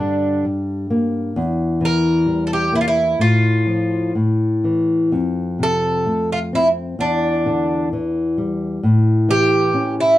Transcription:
0.00 1.33 G2 medium
0.00 0.44 D3 soft
0.00 0.44 D4 medium
0.45 0.89 G3 soft
0.90 1.35 A#3 medium
1.36 3.14 E2 medium
1.81 2.25 E3 soft
1.85 2.46 A#4 loud
2.26 2.71 G3 soft
2.47 2.51 A4 medium
2.53 2.73 G4 medium
2.72 3.17 A#3 soft
2.72 2.80 E4 medium
2.81 2.87 F4 medium
2.88 3.20 E4 medium
3.19 4.12 A2 medium
3.19 4.11 F4 medium
3.66 4.13 F3 soft
4.15 5.10 A2 medium
4.64 5.11 E3 soft
5.12 6.94 F2 medium
5.59 6.04 C3 soft
5.63 6.32 A4 medium
6.06 6.51 A3 soft
6.32 6.38 F4 medium
6.53 6.97 C4 soft
6.53 6.67 E4 medium
6.99 8.78 E2 medium
6.99 7.88 D4 medium
7.46 7.90 D3 soft
7.93 8.36 E3 soft
8.38 8.81 G3 soft
8.83 10.18 A2 medium
9.29 9.72 E3 medium
9.29 9.94 G4 loud
9.74 10.18 C#4 medium
10.00 10.18 E4 medium

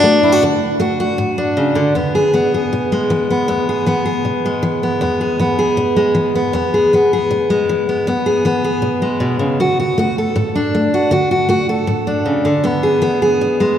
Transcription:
0.00 0.38 A3 medium
0.00 0.43 D4 soft
0.00 0.23 F#4 medium
0.23 0.32 E4 medium
0.32 0.42 F#4 soft
0.43 0.77 D3 medium
0.80 1.15 A3 medium
0.80 0.99 F#4 medium
1.00 1.93 F#4 medium
1.18 1.53 A2 medium
1.38 1.93 D4 medium
1.57 1.76 C#3 medium
1.75 1.95 D3 medium
1.95 2.30 E2 medium
1.95 2.34 B3 medium
2.15 2.54 G#4 medium
2.34 2.68 E3 medium
2.34 3.30 B3 medium
2.54 3.69 G#4 medium
2.73 3.07 B2 medium
2.92 4.45 G#3 medium
3.10 3.44 E3 medium
3.30 3.49 B3 medium
3.48 3.82 E2 medium
3.48 3.87 B3 medium
3.69 4.05 G#4 medium
3.86 4.21 E3 medium
3.86 4.83 B3 medium
4.05 5.20 G#4 medium
4.25 4.59 B2 medium
4.45 5.96 G#3 medium
4.63 4.97 E3 medium
4.83 5.01 B3 medium
5.01 5.35 E2 medium
5.01 5.40 B3 medium
5.21 5.58 G#4 medium
5.39 5.74 E3 medium
5.39 6.35 B3 medium
5.59 6.73 G#4 medium
5.77 6.12 B2 medium
5.96 7.50 G#3 medium
6.15 6.50 E3 medium
6.35 6.54 B3 medium
6.53 6.88 E2 medium
6.53 6.94 B3 medium
6.74 7.13 G#4 medium
6.93 7.27 E3 medium
6.93 7.88 B3 medium
7.13 8.05 G#4 medium
7.31 7.65 B2 medium
7.50 8.05 G#3 medium
7.69 8.03 E3 medium
7.89 8.07 B3 medium
8.07 8.41 E2 medium
8.07 8.44 B3 medium
8.26 8.63 G#4 medium
8.45 8.79 E3 medium
8.45 9.60 B3 medium
8.64 9.57 G#4 medium
8.82 9.17 B2 medium
9.02 9.57 G#3 medium
9.20 9.39 B2 medium
9.39 9.59 C#3 medium
9.60 9.94 D3 medium
9.60 9.79 F#4 medium
9.80 9.99 F#4 medium
9.98 10.32 A3 medium
9.98 10.18 F#4 medium
10.18 10.93 A4 medium
10.36 10.70 A2 medium
10.55 11.10 D4 medium
10.75 11.09 A3 medium
10.94 11.10 F#4 medium
11.11 11.46 D3 medium
11.11 11.30 F#4 medium
11.31 11.48 F#4 medium
11.49 11.84 A3 medium
11.49 11.69 F#4 medium
11.69 12.62 A4 medium
11.87 12.22 A2 medium
12.07 12.62 D4 medium
12.26 12.45 C#3 medium
12.45 12.64 D3 medium
12.64 12.98 E2 medium
12.64 13.01 B3 medium
12.83 13.21 G#4 medium
13.02 13.36 E3 medium
13.02 13.78 B3 medium
13.22 13.78 G#4 medium
13.41 13.75 B2 medium
13.60 13.78 G#3 medium

